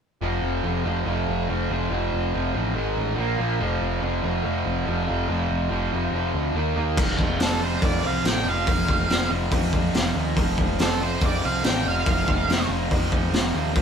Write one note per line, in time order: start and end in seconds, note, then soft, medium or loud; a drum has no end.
0.21 0.42 F1 medium
0.21 0.64 F2 medium
0.21 0.64 C3 medium
0.21 0.65 F3 loud
0.42 0.63 F1 medium
0.63 0.85 F1 medium
0.63 0.84 F2 medium
0.63 0.84 C3 medium
0.63 0.85 F3 medium
0.85 1.05 F1 medium
0.85 1.05 F2 medium
0.85 1.06 C3 medium
0.85 1.06 F3 medium
1.06 1.27 F1 medium
1.06 1.48 F2 medium
1.06 1.48 C3 loud
1.06 1.48 F3 medium
1.29 1.49 F1 medium
1.49 1.69 F1 medium
1.49 1.70 F2 medium
1.49 1.70 C3 medium
1.49 1.71 F3 medium
1.70 1.90 F1 medium
1.70 1.89 F2 medium
1.70 1.89 C3 medium
1.70 1.90 F3 medium
1.90 2.12 F1 medium
1.90 2.33 F2 medium
1.90 2.34 C3 loud
1.90 2.34 F3 loud
2.12 2.33 F1 medium
2.34 2.55 F1 medium
2.34 2.53 F2 medium
2.34 2.54 C3 medium
2.34 2.55 F3 medium
2.54 2.75 A1 medium
2.54 2.75 F2 medium
2.54 2.75 C3 medium
2.54 2.75 F3 medium
2.75 2.96 G#1 medium
2.75 3.17 G#2 medium
2.75 3.16 D#3 medium
2.75 3.17 G#3 loud
2.97 3.17 A1 medium
3.17 3.38 A#1 medium
3.17 3.37 A#2 medium
3.17 3.39 F3 medium
3.17 3.39 A#3 loud
3.38 3.60 A#1 medium
3.38 3.59 A#2 medium
3.38 3.60 F3 medium
3.38 3.60 A#3 medium
3.59 3.81 F1 medium
3.59 4.00 F2 medium
3.59 4.01 C3 medium
3.59 4.02 F3 loud
3.81 4.02 F1 medium
4.01 4.23 F1 medium
4.01 4.21 F2 medium
4.01 4.22 C3 medium
4.01 4.23 F3 medium
4.22 4.44 F1 medium
4.22 4.42 F2 medium
4.22 4.43 C3 medium
4.22 4.44 F3 medium
4.44 4.65 F1 medium
4.44 4.85 F2 medium
4.44 4.85 C3 medium
4.44 4.86 F3 medium
4.65 4.86 F1 medium
4.86 5.07 F1 medium
4.86 5.06 F2 medium
4.86 5.07 C3 medium
4.86 5.07 F3 medium
5.07 5.29 F1 medium
5.07 5.27 F2 medium
5.07 5.29 C3 medium
5.07 5.29 F3 medium
5.28 5.49 F1 medium
5.28 5.69 F2 medium
5.28 5.69 C3 loud
5.28 5.70 F3 loud
5.50 5.70 F1 medium
5.70 5.91 F1 medium
5.70 5.90 F2 medium
5.70 5.91 C3 medium
5.70 5.92 F3 loud
5.92 6.11 F1 medium
5.92 6.13 F2 medium
5.92 6.13 C3 loud
5.92 6.14 F3 medium
6.11 6.33 F1 medium
6.11 6.55 F2 medium
6.11 6.55 C3 medium
6.15 6.55 F3 medium
6.34 6.54 D2 medium
6.54 6.75 D#2 medium
6.54 6.76 D#3 medium
6.54 6.76 A#3 medium
6.54 6.77 D#4 medium
6.76 6.96 D#2 medium
6.76 6.97 D#3 medium
6.76 6.97 A#3 medium
6.76 6.98 D#4 medium
6.97 7.16 F1 medium
6.97 7.39 F2 medium
6.97 7.22 C3 loud
6.97 7.19 F3 loud
6.97 kick loud
6.97 crash medium
7.18 7.37 F1 medium
7.18 7.42 F3 medium
7.18 kick medium
7.23 7.40 C3 medium
7.40 7.78 F1 medium
7.40 7.64 F2 medium
7.40 7.61 C3 medium
7.40 7.60 F3 medium
7.40 7.62 A4 medium
7.40 snare medium
7.40 open hi-hat soft
7.60 7.82 F2 medium
7.60 7.83 C3 medium
7.60 7.86 F3 medium
7.60 7.83 C5 medium
7.82 8.01 F2 medium
7.82 8.06 F2 medium
7.82 8.04 C3 medium
7.82 8.05 D5 medium
7.82 kick loud
7.82 open hi-hat soft
7.86 8.02 F3 medium
8.03 8.22 C2 medium
8.03 8.24 F2 medium
8.03 8.25 C3 medium
8.03 8.27 F3 medium
8.07 8.26 F5 medium
8.24 8.43 A1 medium
8.24 8.65 F2 medium
8.24 8.48 C3 medium
8.24 8.46 F3 medium
8.24 8.47 G5 medium
8.24 snare loud
8.24 open hi-hat soft
8.45 8.64 F1 medium
8.45 8.69 F3 medium
8.49 8.67 C3 medium
8.49 9.30 F5 medium
8.65 8.86 F1 medium
8.65 9.07 F2 loud
8.65 8.89 C3 medium
8.65 8.86 F3 loud
8.65 kick loud
8.65 open hi-hat medium
8.87 9.07 F1 medium
8.87 9.09 C3 medium
8.87 9.11 F3 medium
8.87 kick medium
9.08 9.28 F1 medium
9.08 9.31 F2 medium
9.08 9.30 C3 medium
9.08 9.28 F3 medium
9.08 snare loud
9.08 open hi-hat soft
9.29 9.49 F1 medium
9.29 9.50 F2 medium
9.29 9.51 C3 medium
9.29 9.54 F3 medium
9.50 9.76 F2 medium
9.50 9.89 F2 medium
9.50 9.73 C3 medium
9.50 9.72 F3 medium
9.50 kick medium
9.50 open hi-hat soft
9.73 9.94 F2 medium
9.73 9.95 C3 medium
9.73 9.97 F3 medium
9.73 kick medium
9.94 10.13 F1 medium
9.94 10.36 F2 medium
9.94 10.18 C3 medium
9.94 10.15 F3 medium
9.94 snare loud
9.94 open hi-hat soft
10.15 10.34 D#2 medium
10.15 10.40 F3 medium
10.19 10.37 C3 medium
10.36 10.55 F1 medium
10.36 10.79 F2 medium
10.36 10.60 C3 loud
10.36 kick loud
10.36 open hi-hat soft
10.40 10.58 F3 loud
10.57 10.76 F1 medium
10.57 10.80 C3 medium
10.57 10.83 F3 medium
10.57 kick medium
10.79 11.17 F1 medium
10.79 11.02 F2 medium
10.79 11.00 C3 medium
10.79 11.01 A4 medium
10.79 snare loud
10.79 open hi-hat soft
10.83 10.99 F3 medium
10.99 11.20 F2 medium
10.99 11.21 C3 medium
10.99 11.24 F3 medium
11.03 11.22 C5 medium
11.20 11.46 F2 medium
11.20 11.40 F2 medium
11.20 11.43 C3 medium
11.20 11.42 F3 medium
11.20 kick medium
11.20 open hi-hat soft
11.26 11.44 D5 medium
11.42 11.63 C2 medium
11.42 11.64 C3 medium
11.42 11.67 F3 medium
11.42 11.65 F5 medium
11.46 11.63 F2 medium
11.63 11.83 A1 medium
11.63 12.05 F2 medium
11.63 11.87 C3 medium
11.63 11.84 F3 medium
11.63 11.85 G5 medium
11.63 snare loud
11.63 open hi-hat medium
11.85 12.04 F1 medium
11.85 12.06 C3 medium
11.85 12.08 F3 medium
11.85 12.69 F5 medium
12.05 12.25 F1 medium
12.05 12.47 F2 medium
12.05 12.29 C3 loud
12.05 12.26 F3 loud
12.05 kick loud
12.05 open hi-hat soft
12.27 12.46 F1 medium
12.27 12.48 C3 medium
12.27 12.51 F3 medium
12.27 kick medium
12.47 12.66 F1 medium
12.47 12.72 F2 medium
12.47 12.70 C3 medium
12.47 snare loud
12.47 open hi-hat soft
12.51 12.68 F3 medium
12.68 12.88 F1 medium
12.68 12.90 C3 medium
12.68 12.93 F3 loud
12.72 12.90 F2 medium
12.90 13.14 F2 medium
12.90 13.29 F2 medium
12.90 13.11 C3 medium
12.90 13.10 F3 medium
12.90 kick medium
12.90 open hi-hat soft
13.10 13.31 F2 medium
13.10 13.32 C3 medium
13.10 13.35 F3 medium
13.10 kick medium
13.31 13.51 F1 medium
13.31 13.72 F2 medium
13.31 13.56 C3 medium
13.31 snare loud
13.31 open hi-hat soft
13.35 13.54 F3 medium
13.54 13.73 D#2 medium
13.54 13.73 C3 medium
13.54 13.77 F3 medium
13.73 13.82 F1 medium
13.73 13.82 F2 medium
13.73 13.82 C3 medium
13.73 kick loud
13.73 open hi-hat soft
13.77 13.82 F3 loud